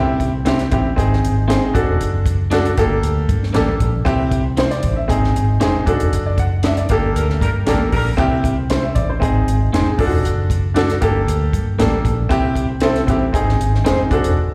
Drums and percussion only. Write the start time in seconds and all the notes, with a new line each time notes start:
0.20 kick, closed hi-hat
0.46 snare, closed hi-hat
0.59 snare, closed hi-hat
0.72 kick, closed hi-hat
0.98 kick, closed hi-hat
1.13 snare
1.25 closed hi-hat
1.50 snare, closed hi-hat
1.75 kick, closed hi-hat
2.01 closed hi-hat
2.26 kick, closed hi-hat
2.51 snare, closed hi-hat
2.65 closed hi-hat
2.77 kick, closed hi-hat
3.03 closed hi-hat
3.29 kick, closed hi-hat
3.43 snare
3.54 snare, closed hi-hat
3.80 kick, closed hi-hat
4.06 kick, closed hi-hat
4.31 kick, closed hi-hat
4.57 snare, closed hi-hat
4.71 snare, closed hi-hat
4.83 kick, closed hi-hat
5.09 kick, closed hi-hat
5.24 snare
5.36 closed hi-hat
5.61 snare, closed hi-hat
5.87 kick, closed hi-hat
6.00 closed hi-hat
6.13 closed hi-hat
6.38 kick, closed hi-hat
6.63 snare, closed hi-hat
6.77 closed hi-hat
6.89 kick, closed hi-hat
7.16 closed hi-hat
7.30 snare
7.41 kick, closed hi-hat
7.67 snare, closed hi-hat
7.92 kick, open hi-hat
8.18 kick, closed hi-hat
8.44 kick, closed hi-hat
8.70 snare, closed hi-hat
8.96 kick, closed hi-hat
9.22 kick, closed hi-hat
9.48 closed hi-hat
9.74 snare, closed hi-hat
9.99 kick, open hi-hat
10.25 closed hi-hat
10.50 kick, closed hi-hat
10.76 snare, closed hi-hat
10.90 snare, closed hi-hat
11.02 kick, closed hi-hat
11.28 closed hi-hat
11.53 kick, closed hi-hat
11.80 snare, closed hi-hat
12.05 kick, closed hi-hat
12.31 kick, closed hi-hat
12.56 kick, closed hi-hat
12.80 snare, closed hi-hat
12.96 snare, closed hi-hat
13.08 kick, closed hi-hat
13.34 kick, closed hi-hat
13.49 snare
13.61 closed hi-hat
13.74 snare
13.86 snare, closed hi-hat
14.11 kick, closed hi-hat
14.24 closed hi-hat